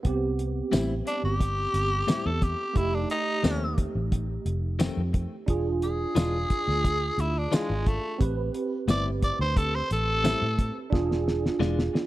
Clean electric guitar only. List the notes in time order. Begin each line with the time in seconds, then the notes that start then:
0.72 A2 G3 C4 E4
2.07 A2 G3 C4 E4
3.43 F2 D#3 A3 C4
4.79 F2 D#3 A3 C4
6.15 E3 G#3 D4 F4
7.52 E3 G#3 D4 F4
8.88 A2 G3 C4 E4
10.24 A2 G3 C4 E4
11.60 E3 G#3 D4 F4